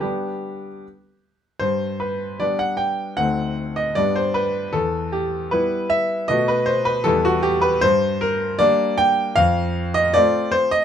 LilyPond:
<<
  \new Staff \with { instrumentName = "Grand piano" } { \time 2/4 \key g \major \tempo 4 = 77 g'4 r4 | c''8 b'8 d''16 fis''16 g''8 | fis''8. ees''16 d''16 c''16 b'8 | a'8 g'8 b'8 e''8 |
ees''16 b'16 c''16 b'16 a'16 fis'16 g'16 b'16 | \key g \minor c''8 bes'8 d''8 g''8 | f''8. ees''16 d''8 c''16 ees''16 | }
  \new Staff \with { instrumentName = "Grand piano" } { \time 2/4 \key g \major <g b d'>4 r4 | g,4 <g b d'>4 | <d, a c' ees'>4 <g, g b d'>4 | e,4 <g b e'>4 |
<b, a b fis'>4 <e, g b e'>4 | \key g \minor g,4 <g bes d'>4 | f,4 <a c' f'>4 | }
>>